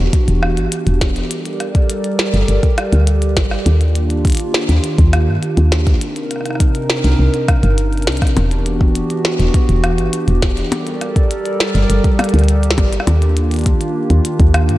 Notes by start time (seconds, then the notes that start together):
Already playing: E3 B3 D4 F#4 G4
0.13 kick, closed hi-hat
0.28 E1, closed hi-hat
0.43 cross-stick
0.57 G1, closed hi-hat
0.72 closed hi-hat
0.87 E1, closed hi-hat
1.01 kick, snare, closed hi-hat
1.16 closed hi-hat
1.31 G3 A4 A#4 D5, closed hi-hat
1.46 closed hi-hat
1.60 cross-stick, closed hi-hat
1.75 kick, closed hi-hat
1.90 closed hi-hat
2.04 closed hi-hat
2.19 snare
2.34 G1, closed hi-hat
2.48 G1, closed hi-hat
2.63 kick, closed hi-hat
2.78 cross-stick, closed hi-hat
2.93 D2, closed hi-hat
3.07 closed hi-hat
3.22 closed hi-hat
3.37 G1, kick, snare, closed hi-hat
3.51 cross-stick
3.66 D#2 D#3 A#3 D4 F4, closed hi-hat
3.81 closed hi-hat
3.95 closed hi-hat
4.10 closed hi-hat
4.25 kick, closed hi-hat
4.27 closed hi-hat
4.30 closed hi-hat
4.32 closed hi-hat
4.35 closed hi-hat
4.37 closed hi-hat
4.40 closed hi-hat
4.54 snare
4.69 D#2, closed hi-hat
4.84 closed hi-hat
4.98 D#2, kick, closed hi-hat
5.13 cross-stick, closed hi-hat
5.28 G2
5.43 closed hi-hat
5.57 D#2, closed hi-hat
5.72 snare, closed hi-hat
5.87 kick, closed hi-hat
6.01 C3 C4 D4 D#4 A#4, closed hi-hat
6.16 closed hi-hat
6.31 cross-stick, closed hi-hat
6.36 cross-stick
6.41 cross-stick
6.46 cross-stick, closed hi-hat
6.50 cross-stick
6.55 cross-stick
6.60 kick, closed hi-hat
6.75 closed hi-hat
6.90 snare
7.04 C2, closed hi-hat
7.19 C2
7.34 closed hi-hat
7.48 kick, cross-stick, closed hi-hat
7.63 G1, closed hi-hat
7.78 closed hi-hat
7.93 closed hi-hat
7.97 closed hi-hat
8.02 closed hi-hat
8.07 C2, snare, closed hi-hat
8.12 closed hi-hat
8.17 closed hi-hat
8.22 kick, cross-stick, closed hi-hat
8.27 closed hi-hat
8.37 E1 E3 B3 F#4 G4, closed hi-hat, percussion blips
8.51 closed hi-hat
8.66 closed hi-hat
8.81 kick
8.95 closed hi-hat
9.10 closed hi-hat
9.25 snare
9.40 E1, closed hi-hat
9.54 kick, closed hi-hat
9.69 E1, closed hi-hat
9.84 cross-stick, closed hi-hat
9.98 G1, closed hi-hat
10.13 closed hi-hat
10.28 E1, closed hi-hat
10.42 kick, snare, closed hi-hat
10.57 closed hi-hat
10.72 G3 A4 A#4 D5, closed hi-hat, percussion blips
10.87 closed hi-hat
11.01 cross-stick, closed hi-hat
11.16 kick, closed hi-hat
11.31 closed hi-hat
11.46 closed hi-hat
11.60 snare
11.75 G1, closed hi-hat
11.90 G1, closed hi-hat
12.04 kick, closed hi-hat
12.19 cross-stick, closed hi-hat, percussion blips
12.24 closed hi-hat
12.29 closed hi-hat
12.34 D2, closed hi-hat
12.39 closed hi-hat
12.44 closed hi-hat
12.48 closed hi-hat
12.63 closed hi-hat
12.71 snare
12.78 G1, kick, closed hi-hat, percussion blips
12.93 closed hi-hat
13.00 cross-stick
13.07 D#2 D#3 A#3 D4 F4, closed hi-hat, percussion blips
13.22 closed hi-hat
13.37 closed hi-hat
13.51 closed hi-hat
13.54 closed hi-hat
13.56 closed hi-hat
13.59 closed hi-hat
13.61 closed hi-hat
13.64 kick, closed hi-hat
13.66 closed hi-hat
13.81 closed hi-hat
14.10 D#2, closed hi-hat
14.25 closed hi-hat
14.40 D#2, kick, closed hi-hat
14.54 cross-stick, closed hi-hat
14.69 G2, closed hi-hat